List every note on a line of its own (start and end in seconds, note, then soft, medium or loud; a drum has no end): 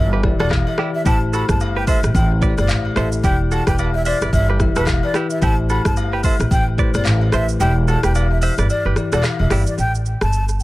0.00 0.31 G1 loud
0.00 0.22 E3 medium
0.00 0.23 E4 medium
0.00 0.24 G4 medium
0.00 0.25 D5 medium
0.00 0.10 E5 medium
0.13 0.21 G4 medium
0.13 0.21 B4 medium
0.22 0.67 E3 medium
0.22 0.68 E4 medium
0.22 0.68 G4 medium
0.22 0.68 D5 medium
0.22 kick loud
0.22 cross-stick medium
0.40 0.62 E1 medium
0.40 0.49 F#4 medium
0.40 0.48 A4 medium
0.40 0.50 D5 medium
0.40 cross-stick loud
0.40 high agogo medium
0.50 kick medium
0.50 cross-stick loud
0.50 clap medium
0.50 low woodblock medium
0.67 0.77 E5 medium
0.67 high agogo medium
0.77 1.00 E3 medium
0.77 1.00 E4 medium
0.77 0.90 E4 medium
0.77 1.01 G4 medium
0.77 0.90 G4 medium
0.77 1.01 D5 medium
0.77 cross-stick loud
0.95 1.04 E5 medium
1.04 1.41 A1 loud
1.04 1.90 A3 medium
1.04 1.90 E4 medium
1.04 1.18 E4 medium
1.04 1.90 G4 medium
1.04 1.17 G4 medium
1.04 1.91 C5 medium
1.04 1.19 A5 loud
1.04 kick loud
1.04 high agogo medium
1.04 shaker medium
1.33 1.45 F#4 medium
1.33 1.44 A4 medium
1.33 1.47 B5 medium
1.33 high agogo medium
1.33 shaker soft
1.49 1.93 G1 medium
1.49 1.59 A5 medium
1.49 kick medium
1.49 cross-stick loud
1.49 shaker medium
1.60 high agogo medium
1.60 low woodblock medium
1.60 shaker medium
1.77 1.85 G4 medium
1.77 1.84 B4 medium
1.77 1.86 G5 medium
1.87 1.99 A4 medium
1.87 1.99 C5 medium
1.87 2.01 E5 medium
1.87 kick loud
1.87 open hi-hat medium
1.87 high agogo medium
1.87 shaker medium
2.03 2.12 A1 medium
2.03 cross-stick loud
2.03 shaker medium
2.15 2.50 A1 loud
2.15 2.29 G5 medium
2.15 kick medium
2.15 high agogo medium
2.15 shaker medium
2.41 2.85 A3 medium
2.41 2.86 E4 medium
2.41 2.86 G4 medium
2.41 2.54 B4 medium
2.41 2.50 C5 medium
2.41 2.53 D5 medium
2.41 kick loud
2.41 shaker soft
2.50 2.90 D5 medium
2.58 2.67 G1 medium
2.58 2.68 D5 medium
2.58 cross-stick medium
2.58 high agogo medium
2.58 shaker medium
2.68 2.91 A1 medium
2.68 clap loud
2.68 low woodblock medium
2.68 shaker medium
2.85 high agogo medium
2.95 3.19 A1 medium
2.95 3.18 A3 medium
2.95 3.18 E4 medium
2.95 3.19 G4 medium
2.95 3.19 A4 medium
2.95 3.09 A4 medium
2.95 3.08 C5 medium
2.95 3.10 E5 medium
2.95 cross-stick loud
2.95 shaker medium
3.12 shaker medium
3.23 3.59 E1 loud
3.23 4.08 E3 medium
3.23 4.08 E4 medium
3.23 3.36 E4 medium
3.23 4.09 G4 medium
3.23 3.35 G4 medium
3.23 4.09 D5 medium
3.23 3.38 G5 loud
3.23 kick loud
3.23 high agogo medium
3.23 shaker medium
3.51 3.63 F#4 medium
3.51 3.63 A4 medium
3.51 3.65 A5 medium
3.51 high agogo medium
3.51 shaker soft
3.67 4.11 E1 medium
3.67 3.76 G4 medium
3.67 3.75 B4 medium
3.67 3.77 G5 medium
3.67 kick medium
3.67 cross-stick loud
3.67 shaker medium
3.78 3.90 B4 medium
3.78 3.90 D5 medium
3.78 high agogo medium
3.78 low woodblock medium
3.78 shaker medium
3.95 4.04 E5 medium
4.05 4.18 C5 medium
4.05 4.19 D5 medium
4.05 4.17 E5 medium
4.05 open hi-hat medium
4.05 high agogo medium
4.05 shaker medium
4.21 4.31 G1 medium
4.21 4.30 B4 medium
4.21 4.30 D5 medium
4.21 cross-stick medium
4.21 shaker medium
4.33 4.68 G1 loud
4.33 4.47 E5 medium
4.33 kick medium
4.33 high agogo medium
4.33 shaker medium
4.50 4.58 G4 medium
4.50 4.57 B4 medium
4.59 5.04 E3 medium
4.59 5.04 E4 medium
4.59 5.04 G4 medium
4.59 5.05 E5 medium
4.59 kick loud
4.59 cross-stick medium
4.59 shaker soft
4.76 4.98 E1 medium
4.76 4.85 F#4 medium
4.76 4.84 A4 medium
4.76 4.86 B4 medium
4.76 cross-stick loud
4.76 high agogo medium
4.76 shaker medium
4.87 kick medium
4.87 cross-stick loud
4.87 clap loud
4.87 low woodblock medium
4.87 shaker medium
5.03 5.13 D5 medium
5.03 high agogo medium
5.14 5.36 E3 medium
5.14 5.37 E4 medium
5.14 5.27 E4 medium
5.14 5.37 G4 medium
5.14 5.26 G4 medium
5.14 5.37 B4 medium
5.14 cross-stick loud
5.14 shaker medium
5.30 5.41 E5 medium
5.30 shaker medium
5.41 5.77 A1 loud
5.41 6.26 A3 medium
5.41 6.26 E4 medium
5.41 5.54 E4 medium
5.41 6.27 G4 medium
5.41 5.54 G4 loud
5.41 6.27 C5 medium
5.41 5.56 A5 loud
5.41 kick loud
5.41 high agogo medium
5.41 shaker medium
5.70 5.81 F#4 medium
5.70 5.81 A4 medium
5.70 5.83 B5 medium
5.70 high agogo medium
5.70 shaker soft
5.85 6.29 G1 medium
5.85 5.95 A5 medium
5.85 kick medium
5.85 cross-stick loud
5.85 shaker medium
5.97 high agogo medium
5.97 low woodblock medium
5.97 shaker medium
6.13 6.21 G4 medium
6.13 6.21 B4 medium
6.13 6.22 G5 medium
6.23 6.36 A4 medium
6.23 6.35 C5 medium
6.23 6.38 E5 medium
6.23 kick loud
6.23 open hi-hat medium
6.23 high agogo medium
6.23 shaker medium
6.40 6.49 A1 loud
6.40 cross-stick medium
6.40 shaker medium
6.51 6.86 A1 loud
6.51 6.65 G5 medium
6.51 kick loud
6.51 high agogo medium
6.51 shaker medium
6.77 7.22 A3 medium
6.77 7.22 E4 medium
6.77 7.23 G4 medium
6.77 6.90 B4 medium
6.77 7.23 C5 medium
6.77 6.90 D5 medium
6.77 kick loud
6.77 shaker soft
6.94 7.06 G1 loud
6.94 7.04 D5 medium
6.94 cross-stick loud
6.94 high agogo medium
6.94 shaker medium
7.05 7.28 A1 loud
7.05 clap loud
7.05 low woodblock medium
7.05 shaker medium
7.21 high agogo medium
7.32 7.55 A1 medium
7.32 7.54 A3 medium
7.32 7.55 E4 medium
7.32 7.55 G4 medium
7.32 7.45 A4 medium
7.32 7.56 B4 medium
7.32 7.45 C5 medium
7.32 7.47 E5 medium
7.32 cross-stick loud
7.32 shaker medium
7.49 shaker medium
7.59 7.95 E1 loud
7.59 8.44 E3 medium
7.59 8.45 E4 medium
7.59 7.72 E4 medium
7.59 8.45 G4 medium
7.59 7.72 G4 medium
7.59 8.46 D5 medium
7.59 7.74 G5 loud
7.59 high agogo medium
7.59 shaker medium
7.88 8.00 F#4 medium
7.88 7.99 A4 medium
7.88 8.01 A5 medium
7.88 high agogo medium
7.88 shaker soft
8.03 8.47 E1 medium
8.03 8.12 G4 medium
8.03 8.12 B4 medium
8.03 8.13 G5 medium
8.03 cross-stick loud
8.03 shaker medium
8.15 8.27 B4 medium
8.15 8.26 D5 medium
8.15 high agogo medium
8.15 low woodblock medium
8.15 shaker medium
8.31 8.41 E5 medium
8.41 8.54 C5 medium
8.41 8.56 E5 medium
8.41 8.54 E5 medium
8.41 open hi-hat medium
8.41 high agogo medium
8.41 shaker medium
8.58 8.67 G1 medium
8.58 8.67 B4 medium
8.58 8.66 D5 medium
8.58 cross-stick loud
8.58 shaker medium
8.70 8.83 D5 medium
8.70 high agogo medium
8.70 shaker medium
8.85 8.94 G1 medium
8.85 8.94 G4 medium
8.85 8.94 B4 medium
8.95 9.40 E3 medium
8.95 9.41 E4 medium
8.95 9.41 G4 medium
8.95 9.41 D5 medium
8.95 cross-stick medium
8.95 shaker soft
9.12 9.22 E1 medium
9.12 9.21 F#4 medium
9.12 9.21 A4 medium
9.12 9.23 D5 medium
9.12 cross-stick loud
9.12 high agogo medium
9.12 shaker medium
9.23 cross-stick loud
9.23 clap loud
9.23 low woodblock medium
9.23 shaker medium
9.39 9.49 E1 medium
9.39 9.50 E5 medium
9.39 high agogo medium
9.50 9.64 G1 medium
9.50 9.73 E3 medium
9.50 9.73 E4 medium
9.50 9.63 E4 medium
9.50 9.73 G4 medium
9.50 9.63 G4 medium
9.50 9.74 D5 medium
9.50 cross-stick loud
9.50 open hi-hat medium
9.50 shaker medium
9.67 9.77 D5 medium
9.67 shaker medium
9.78 10.13 A1 medium
9.78 9.92 G5 loud
9.78 shaker medium
9.95 shaker soft
10.06 shaker soft
10.21 10.63 G1 medium
10.21 10.45 A5 medium
10.21 cross-stick loud
10.21 shaker medium
10.33 shaker medium
10.48 shaker medium
10.60 shaker medium